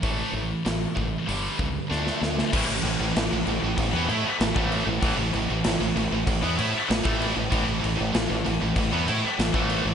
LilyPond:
<<
  \new Staff \with { instrumentName = "Distorted electric guitar" } { \clef bass \time 4/4 \key d \dorian \tempo 4 = 96 <a, e a>8 <a, e>8 <a, e>8 <a, e>8 <g, d g>8 <g, d>8 <d a d'>8 <d a>8 | <a, e>16 <a, e>16 <a, e>16 <a, e>16 <a, e>16 <a, e>16 <a, e>16 <a, e>16 <a, e>16 <e b>16 <a e'>16 r16 <a, e>16 <a, e a>8 <a, e>16 | <a, e>16 <a, e>16 <a, e>16 <a, e>16 <a, e>16 <a, e>16 <a, e>16 <a, e>16 <a, e>16 <e b>16 <a e'>16 r16 <a, e>16 <a, e a>8 <a, e>16 | <a, e>16 <a, e>16 <a, e>16 <a, e>16 <a, e>16 <a, e>16 <a, e>16 <a, e>16 <a, e>16 <e b>16 <a e'>16 r16 <a, e>16 <a, e a>8 <a, e>16 | }
  \new Staff \with { instrumentName = "Distorted electric guitar" } { \clef bass \time 4/4 \key d \dorian <a, e a>8 <a, e>8 <a, e>8 <a, e>8 <g, d g>8 <g, d>8 <d a d'>8 <d a>8 | <a, e>16 <a, e>16 <a, e>16 <a, e>16 <a, e>16 <a, e>16 <a, e>16 <a, e>16 <a, e>16 <e b>16 <a e'>16 r16 <a, e>16 <a, e a>8 <a, e>16 | <a, e>16 <a, e>16 <a, e>16 <a, e>16 <a, e>16 <a, e>16 <a, e>16 <a, e>16 <a, e>16 <e b>16 <a e'>16 r16 <a, e>16 <a, e a>8 <a, e>16 | <a, e>16 <a, e>16 <a, e>16 <a, e>16 <a, e>16 <a, e>16 <a, e>16 <a, e>16 <a, e>16 <e b>16 <a e'>16 r16 <a, e>16 <a, e a>8 <a, e>16 | }
  \new Staff \with { instrumentName = "Distorted electric guitar" } { \clef bass \time 4/4 \key d \dorian r1 | <a, e>16 <a, e>16 <a, e>16 <a, e>16 <a, e>16 <a, e>16 <a, e>16 <a, e>16 <a, e>16 <e b>16 <a e'>16 r16 <a, e>16 <a, e a>8 <a, e>16 | <a, e>16 <a, e>16 <a, e>16 <a, e>16 <a, e>16 <a, e>16 <a, e>16 <a, e>16 <a, e>16 <e b>16 <a e'>16 r16 <a, e>16 <a, e a>8 <a, e>16 | <a, e>16 <a, e>16 <a, e>16 <a, e>16 <a, e>16 <a, e>16 <a, e>16 <a, e>16 <a, e>16 <e b>16 <a e'>16 r16 <a, e>16 <a, e a>8 <a, e>16 | }
  \new Staff \with { instrumentName = "Fingered electric bass" } { \clef bass \time 4/4 \key d \dorian a,,8 a,,8 a,,8 a,,8 g,,8 cis,8 d,8 d,8 | a,,16 a,,16 a,,16 a,,16 a,,16 a,,16 a,,16 a,,16 a,,16 e,16 a,16 r16 a,,16 a,,8 a,,16 | a,,16 a,,16 a,,16 a,,16 a,,16 a,,16 a,,16 a,,16 a,,16 e,16 a,16 r16 a,,16 a,,8 a,,16 | a,,16 a,,16 a,,16 a,,16 a,,16 a,,16 a,,16 a,,16 a,,16 e,16 a,16 r16 a,,16 a,,8 a,,16 | }
  \new DrumStaff \with { instrumentName = "Drums" } \drummode { \time 4/4 <hho bd>4 <hho sn>8 bd8 hho8 bd8 sn16 sn16 sn16 sn16 | <cymc bd>8 cymc8 <cymc sn>8 cymc8 <cymc bd>8 cymc8 <cymc sn>16 bd16 cymc8 | <cymc bd>8 cymc8 <cymc sn>8 cymc8 <cymc bd>8 cymc8 <cymc sn>16 bd16 cymc8 | <cymc bd>8 cymc8 <cymc sn>8 cymc8 <cymc bd>8 cymc8 <cymc sn>16 bd16 cymc8 | }
>>